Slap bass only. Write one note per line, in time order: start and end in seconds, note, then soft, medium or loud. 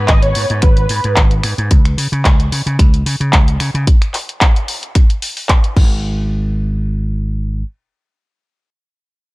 0.09 0.31 G#1 medium
0.36 0.48 G#2 medium
0.50 0.61 G#2 medium
0.63 0.85 G#1 loud
0.90 1.02 G#2 medium
1.04 1.15 G#2 medium
1.17 1.40 G#1 loud
1.44 1.56 G#2 loud
1.58 1.69 G#2 medium
1.71 1.94 C#2 loud
1.98 2.10 C#3 medium
2.12 2.23 C#3 medium
2.25 2.48 C#2 medium
2.52 2.64 C#3 medium
2.66 2.77 C#3 loud
2.79 3.02 C#2 loud
3.06 3.18 C#3 loud
3.20 3.31 C#3 medium
3.33 3.56 C#2 loud
3.60 3.72 C#3 medium
3.74 3.85 C#3 loud
5.77 7.62 G#1 loud